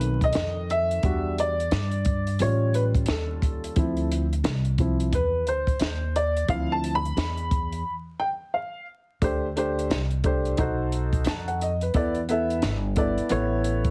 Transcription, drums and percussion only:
0.01 closed hi-hat
0.21 kick, closed hi-hat
0.33 snare, closed hi-hat
0.70 closed hi-hat
0.91 closed hi-hat
1.03 kick, closed hi-hat
1.38 closed hi-hat
1.60 closed hi-hat
1.71 snare, closed hi-hat
1.91 closed hi-hat
2.05 kick, closed hi-hat
2.27 closed hi-hat
2.39 closed hi-hat
2.74 closed hi-hat
2.95 kick, closed hi-hat
3.06 snare, closed hi-hat
3.42 kick, closed hi-hat
3.64 closed hi-hat
3.76 kick, closed hi-hat
3.97 closed hi-hat
4.12 closed hi-hat
4.33 closed hi-hat
4.44 snare, closed hi-hat
4.65 closed hi-hat
4.78 kick, closed hi-hat
5.00 closed hi-hat
5.13 kick, closed hi-hat
5.47 closed hi-hat
5.67 kick, closed hi-hat
5.79 snare, closed hi-hat
6.16 closed hi-hat
6.37 closed hi-hat
6.48 kick, closed hi-hat
6.84 closed hi-hat
7.05 closed hi-hat
7.17 snare, closed hi-hat
7.37 closed hi-hat
7.51 kick, closed hi-hat
7.72 closed hi-hat
9.22 kick, closed hi-hat
9.57 closed hi-hat
9.79 closed hi-hat
9.91 snare, closed hi-hat
10.11 closed hi-hat
10.24 kick, closed hi-hat
10.45 closed hi-hat
10.57 kick, closed hi-hat
10.92 closed hi-hat
11.13 kick, closed hi-hat
11.25 snare, closed hi-hat
11.48 closed hi-hat
11.61 closed hi-hat
11.81 closed hi-hat
11.94 kick, closed hi-hat
12.15 closed hi-hat
12.29 closed hi-hat
12.50 closed hi-hat
12.62 snare, closed hi-hat
12.96 kick, closed hi-hat
13.18 closed hi-hat
13.29 closed hi-hat
13.64 closed hi-hat
13.84 kick, closed hi-hat

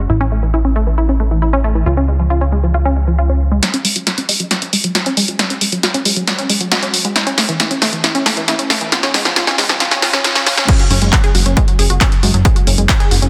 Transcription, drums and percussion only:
3.63 snare, closed hi-hat
3.74 closed hi-hat
3.85 open hi-hat
3.96 closed hi-hat
4.07 snare, closed hi-hat
4.18 closed hi-hat
4.29 open hi-hat
4.40 closed hi-hat
4.51 snare, closed hi-hat
4.62 closed hi-hat
4.73 open hi-hat
4.84 closed hi-hat
4.95 snare, closed hi-hat
5.06 closed hi-hat
5.17 open hi-hat
5.28 closed hi-hat
5.39 snare, closed hi-hat
5.50 closed hi-hat
5.61 open hi-hat
5.72 closed hi-hat
5.83 snare, closed hi-hat
5.94 closed hi-hat
6.05 open hi-hat
6.16 closed hi-hat
6.28 snare, closed hi-hat
6.39 closed hi-hat
6.50 open hi-hat
6.61 closed hi-hat
6.72 snare, closed hi-hat
6.83 closed hi-hat
6.94 open hi-hat
7.05 closed hi-hat
7.16 snare, closed hi-hat
7.27 closed hi-hat
7.38 snare, open hi-hat
7.49 closed hi-hat
7.60 snare, closed hi-hat
7.71 closed hi-hat
7.82 snare, open hi-hat
7.93 closed hi-hat
8.04 snare, closed hi-hat
8.15 closed hi-hat
8.26 snare, open hi-hat
8.37 closed hi-hat
8.48 snare, closed hi-hat
8.59 closed hi-hat
8.70 snare, open hi-hat
8.81 closed hi-hat
8.92 snare, closed hi-hat
9.03 snare, closed hi-hat
9.14 snare, open hi-hat
9.25 snare, closed hi-hat
9.36 snare, closed hi-hat
9.47 snare, closed hi-hat
9.58 snare, open hi-hat
9.69 snare, closed hi-hat
9.80 snare, closed hi-hat
9.91 snare, closed hi-hat
10.02 snare, open hi-hat
10.13 snare, closed hi-hat
10.24 snare, closed hi-hat
10.35 snare, closed hi-hat
10.46 snare, open hi-hat
10.57 snare, closed hi-hat
10.68 kick, closed hi-hat, crash
10.80 closed hi-hat
10.91 open hi-hat
11.02 closed hi-hat
11.13 kick, clap, closed hi-hat
11.24 closed hi-hat
11.35 open hi-hat
11.46 closed hi-hat
11.57 kick, closed hi-hat
11.68 closed hi-hat
11.79 open hi-hat
11.90 closed hi-hat
12.01 kick, clap, closed hi-hat
12.12 closed hi-hat
12.23 open hi-hat
12.34 closed hi-hat
12.45 kick, closed hi-hat
12.56 closed hi-hat
12.67 open hi-hat
12.78 closed hi-hat
12.89 kick, clap, closed hi-hat
13.00 closed hi-hat
13.11 open hi-hat
13.22 closed hi-hat

